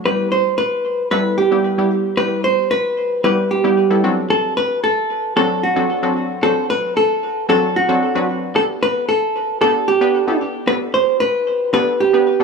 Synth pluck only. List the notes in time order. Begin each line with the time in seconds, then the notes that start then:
0.05 G3 B3 E4 G4
1.11 G3 B3 E4 A4
1.51 G3 B3 E4 G4
1.78 G3 B3 E4 G4
2.17 G3 B3 E4 G4
3.24 G3 B3 E4 G4
3.64 G3 B3 E4 G4
3.90 G3 B3 E4 A4
4.04 F#3 C4 D4 F#4 A4
5.36 F#3 C4 D4 F#4 A4
5.76 F#3 C4 D4 F#4 A4
6.03 F#3 C4 D4 F#4 A4
6.42 F#3 C4 D4 F#4 C5
7.49 F#3 C4 D4 F#4 A4
7.89 F#3 C4 D4 F#4 A4
8.15 F#3 C4 D4 F#4 B4
8.55 B3 D4 G4 A4
9.61 B3 D4 G4 A4
10.01 B3 D4 G4 B4
10.27 B3 D4 G4 A4
10.67 B3 D4 G4 A4
11.73 B3 D4 G4 A4
12.13 B3 D4 G4 B4
12.40 B3 D4 G4 A4